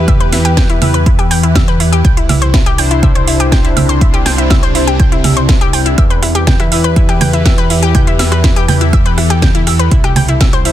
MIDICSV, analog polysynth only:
0, 0, Header, 1, 2, 480
1, 0, Start_track
1, 0, Key_signature, 1, "minor"
1, 0, Tempo, 491803
1, 77, Time_signature, 4, 2, 24, 8
1, 10464, End_track
2, 0, Start_track
2, 0, Title_t, "Analog polysynth"
2, 0, Program_c, 0, 90
2, 0, Note_on_c, 0, 64, 81
2, 0, Note_on_c, 0, 67, 76
2, 0, Note_on_c, 0, 71, 90
2, 769, Note_off_c, 0, 64, 0
2, 769, Note_off_c, 0, 67, 0
2, 769, Note_off_c, 0, 71, 0
2, 797, Note_on_c, 0, 64, 77
2, 797, Note_on_c, 0, 67, 69
2, 798, Note_on_c, 0, 71, 85
2, 936, Note_off_c, 0, 64, 0
2, 936, Note_off_c, 0, 67, 0
2, 936, Note_off_c, 0, 71, 0
2, 2717, Note_on_c, 0, 64, 77
2, 2718, Note_on_c, 0, 62, 83
2, 2718, Note_on_c, 0, 72, 91
2, 4609, Note_off_c, 0, 62, 0
2, 4609, Note_off_c, 0, 64, 0
2, 4609, Note_off_c, 0, 72, 0
2, 4637, Note_on_c, 0, 62, 76
2, 4637, Note_on_c, 0, 64, 71
2, 4637, Note_on_c, 0, 72, 85
2, 4776, Note_off_c, 0, 62, 0
2, 4776, Note_off_c, 0, 64, 0
2, 4776, Note_off_c, 0, 72, 0
2, 6556, Note_on_c, 0, 64, 83
2, 6556, Note_on_c, 0, 67, 74
2, 6556, Note_on_c, 0, 71, 91
2, 8448, Note_off_c, 0, 64, 0
2, 8448, Note_off_c, 0, 67, 0
2, 8448, Note_off_c, 0, 71, 0
2, 8477, Note_on_c, 0, 64, 77
2, 8477, Note_on_c, 0, 67, 70
2, 8477, Note_on_c, 0, 71, 84
2, 8616, Note_off_c, 0, 64, 0
2, 8616, Note_off_c, 0, 67, 0
2, 8616, Note_off_c, 0, 71, 0
2, 10397, Note_on_c, 0, 62, 81
2, 10397, Note_on_c, 0, 64, 75
2, 10397, Note_on_c, 0, 72, 91
2, 10464, Note_off_c, 0, 62, 0
2, 10464, Note_off_c, 0, 64, 0
2, 10464, Note_off_c, 0, 72, 0
2, 10464, End_track
0, 0, End_of_file